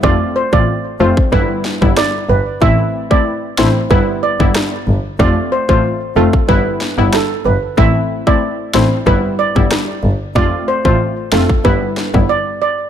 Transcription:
<<
  \new Staff \with { instrumentName = "Steel pan" } { \time 4/4 \key g \mixolydian \tempo 4 = 93 d''16 r16 c''16 d''8 r16 c''8 b'8. r16 d''16 r16 b'16 r16 | e''16 r8 d''16 r8 c''16 r16 b'16 r16 d''16 r4 r16 | d''16 r16 c''16 c''8 r16 a'8 b'8. r16 a'16 r16 b'16 r16 | e''16 r8 d''16 r8 c''16 r16 b'16 r16 d''16 r4 r16 |
d''16 r16 c''16 c''8 r16 a'8 b'8. r16 d''16 r16 d''16 r16 | }
  \new Staff \with { instrumentName = "Synth pluck" } { \time 4/4 \key g \mixolydian <a c' f'>8. <a c' f'>16 r8 <a c' f'>16 r16 <g b e'>8. <g b e'>16 r4 | <a c' e'>8. <a c' e'>16 r8 <a c' e'>16 r16 <g b e'>8. <g b e'>16 r4 | <a c' f'>8. <a c' f'>16 r8 <a c' f'>16 r16 <g b e'>8. <g b e'>16 r4 | <a c' e'>8. <a c' e'>16 r8 <a c' e'>16 r16 <g b e'>8. <g b e'>16 r4 |
<a c' f'>8. <a c' f'>16 r8 <a c' f'>16 r16 <g b e'>8. <g b e'>16 r4 | }
  \new Staff \with { instrumentName = "Double bass" } { \clef bass \time 4/4 \key g \mixolydian f,,8. a,,8. f,,8 g,,8. g,,8. g,,8 | a,,4~ a,,16 r16 a,,16 r16 g,,8. g,,8 r16 g,,16 r16 | f,,8. a,,8. f,,8 g,,8. g,,8. g,,8 | a,,4~ a,,16 r16 a,,16 r16 g,,8. g,,8 r16 g,,16 r16 |
f,,8. a,,8. f,,8 g,,8. g,,16 r4 | }
  \new DrumStaff \with { instrumentName = "Drums" } \drummode { \time 4/4 bd8. bd16 r8. bd16 bd8 sn16 bd16 <ss sn>4 | bd8. bd16 r8 sn8 bd8. bd16 <ss sn>4 | bd8. bd16 r8. bd16 bd8 sn8 <ss sn>4 | bd8. bd16 r8 sn8 bd8. bd16 <ss sn>4 |
bd8. bd16 r8 sn16 bd16 bd8 sn16 bd16 r4 | }
>>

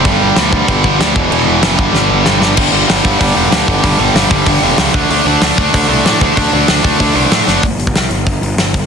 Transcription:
<<
  \new Staff \with { instrumentName = "Distorted electric guitar" } { \clef bass \time 4/4 \key g \major \tempo 4 = 190 <g, d g>4 <g, d g>8 <g, d g>8 <g, d g>4 <g, d g>8 <e, b, e>8 | <e, b, e>4 <e, b, e>8 <g, d g>8 <g, d g>4 <g, d g>8 <g, d g>8 | \key d \mixolydian <g, d g>8 <g, d g>8 <g, d g>8 <g, d g>8 <g, d g>8 <g, d g>8 <g, d g>8 <g, d g>8 | <g, d g>8 <g, d g>8 <g, d g>8 <g, d g>8 <g, d g>8 <g, d g>8 <g, d g>8 <d a d'>8 |
<d a d'>8 <d a d'>8 <d a d'>8 <d a d'>8 <d a d'>8 <d a d'>8 <d a d'>8 <d a d'>8 | <d a d'>8 <d a d'>8 <d a d'>8 <d a d'>8 <d a d'>8 <d a d'>8 <d a d'>8 <d a d'>8 | \key c \major r1 | }
  \new Staff \with { instrumentName = "Picked electric bass" } { \clef bass \time 4/4 \key g \major g,,4 d,4 g,,8 g,,8 d,8 e,,8 | e,,8 e,,8 fis,,8 g,,8 g,,8 g,,8 g,,8 g,,8 | \key d \mixolydian g,,8 g,,8 g,,8 g,,8 g,,8 e,,8 d,8 g,,8 | g,,8 g,,8 g,,8 g,,8 g,,8 e,,8 cis,8 d,8 |
d,8 d,8 d,8 d,8 d,8 c,8 a,8 d,8 | d,8 d,8 d,8 d,8 d,8 c,8 a,8 fis,,8 | \key c \major g,,8 g,,8 c,8 g,,8 g,,8 g,,8 g,,8 g,,8 | }
  \new DrumStaff \with { instrumentName = "Drums" } \drummode { \time 4/4 <cymc bd>4 <cymc sn>8 bd8 <cymc bd>8 bd8 <cymc sn>8 bd8 | cymc4 <cymc sn>8 bd8 sn4 sn8 sn8 | <cymc bd>4 <hho sn>8 bd8 <hho bd>4 <hho sn>8 bd8 | <hho bd>4 <hho sn>8 bd8 <hho bd>4 <hho sn>8 bd8 |
hho4 <hho sn>8 bd8 <hho bd>4 <hho sn>8 bd8 | <hho bd>4 <hho sn>8 bd8 <hho bd>4 <hho sn>8 sn8 | <hho bd>8 hho16 bd16 <hho sn>8 hho8 <hho bd>8 hho8 <hho sn>8 <hho bd>8 | }
>>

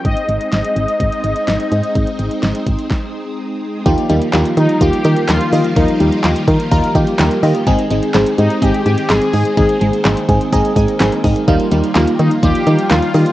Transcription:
<<
  \new Staff \with { instrumentName = "Analog polysynth" } { \time 4/4 \key ees \major \tempo 4 = 126 ees''1~ | ees''2. r4 | r4. ees'8 g'4 f'4 | ees'4 r2. |
r4. ees'8 g'8 g'8 aes'4 | aes'4 r2. | r4. ees'8 g'4 f'4 | }
  \new Staff \with { instrumentName = "Synth arpeggio sound" } { \time 4/4 \key ees \major r1 | r1 | f8 g8 bes8 r8 f'8 g'8 bes'8 ees''8 | f8 g8 bes8 r8 f'8 g'8 bes'8 ees''8 |
ees8 aes8 c'8 r8 ees''8 aes''8 c'''8 ees'''8 | ees8 aes8 c'8 r8 ees''8 aes''8 c'''8 ees'''8 | f8 g8 bes8 r8 f'8 g'8 bes'8 ees''8 | }
  \new Staff \with { instrumentName = "FM electric piano" } { \time 4/4 \key ees \major r1 | r1 | <bes ees' f' g'>8 <bes ees' f' g'>8 <bes ees' f' g'>8 <bes ees' f' g'>8 <bes ees' f' g'>8 <bes ees' f' bes'>8 <bes ees' f' g'>8 <bes ees' f' g'>8 | <bes ees' f' bes'>8 <bes ees' f' g'>8 <bes ees' f' g'>8 <bes ees' f' bes'>8 <bes ees' f' bes'>8 <bes ees' f' g'>8 <bes ees' f' g'>8 <bes ees' f' g'>8 |
<aes c' ees' aes'>8 <aes c' ees' aes'>8 <aes c' ees' aes'>8 <aes c' ees' g'>8 <aes c' ees' aes'>8 <aes c' ees' g'>8 <aes c' ees' aes'>8 <aes c' ees' aes'>8 | <aes c' ees' aes'>8 <aes c' ees' aes'>8 <aes c' ees' aes'>8 <aes c' ees' aes'>8 <aes c' ees' aes'>8 <aes c' ees' aes'>8 <aes c' ees' aes'>8 <aes c' ees' aes'>8 | <g bes ees' f'>8 <g bes ees' g'>8 <g bes ees' f'>8 <g bes ees' f'>8 <g bes ees' f'>8 <g bes ees' f'>8 <g bes ees' f'>8 <g bes ees' g'>8 | }
  \new Staff \with { instrumentName = "String machine" } { \clef bass \time 4/4 \key ees \major << { <aes ees'>1~ | <aes ees'>1 | <ees f g f'>1~ | <ees f g f'>1 |
<ees c'>1~ | <ees c'>1 | <f g f'>1 | } \\ { c'1~ | c'1 | bes1~ | bes1 |
aes1 | bes1~ | bes1 | } >> }
  \new Staff \with { instrumentName = "FM bass" } { \clef bass \time 4/4 \key ees \major aes,,16 r16 aes,,16 r16 aes,,16 r16 aes,,16 r16 aes,,16 r16 aes,,16 r16 aes,,16 r16 aes,16 r16 | aes,,16 r16 aes,,16 r16 aes,,16 r16 aes,,16 r2 r16 | ees,16 r16 ees,16 r16 ees,16 r16 ees16 r16 ees,16 r16 ees16 r16 ees,16 r16 ees16 r16 | ees,16 r16 ees,16 r16 ees,16 r16 ees16 r16 ees,16 r16 ees16 r16 ees,16 r16 ees16 r16 |
aes,,16 r16 aes,,16 r16 aes,,16 r16 aes,16 r16 aes,,16 r16 aes,16 r16 aes,,16 r16 aes,16 r16 | aes,,16 r16 aes,,16 r16 aes,,16 r16 aes,16 r16 aes,,16 r16 aes,16 r16 aes,,16 r16 aes,16 r16 | ees,16 r16 ees,16 r16 ees,16 r16 ees16 r16 ees,16 r16 ees16 r16 ees,16 r16 ees16 r16 | }
  \new DrumStaff \with { instrumentName = "Drums" } \drummode { \time 4/4 <hh bd>16 hh16 hh16 hh16 <hh sn>16 hh16 hh16 hh16 <hh bd>16 hh16 hh16 hh16 <hh sn>16 hh16 hh16 hh16 | <hh bd>16 hh16 hh16 hh16 <hh sn>16 hh16 <hh bd>16 hh16 <bd sn>4 r4 | <hh bd>16 hh16 hh16 hh16 <hc hh sn>16 hh16 hh16 hh16 <hh bd>16 hh16 hh16 hh16 <hc hh sn>16 hh16 hho16 hh16 | <hh bd>16 hh16 hh16 hh16 <hc hh sn>16 hh16 <hh bd>16 hh16 <hh bd>16 hh16 <hh bd>16 hh16 <hc hh sn>16 hh16 hho16 hh16 |
<hh bd>16 hh16 hh16 hh16 <hc hh sn>16 hh16 hh16 hh16 <hh bd>16 hh16 hh16 hh16 <hc hh sn>16 hh16 hho16 hh16 | <hh bd>16 hh16 hh16 hh16 <hc hh sn>16 hh16 <hh bd>16 hh16 <hh bd>16 hh16 <hh bd>16 hh16 <hc hh sn>16 hh16 <hho bd>16 hh16 | <hh bd>16 hh16 hh16 hh16 <hc hh sn>16 hh16 hh16 hh16 <hh bd>16 hh16 hh16 hh16 <hc hh sn>16 hh16 hho16 hh16 | }
>>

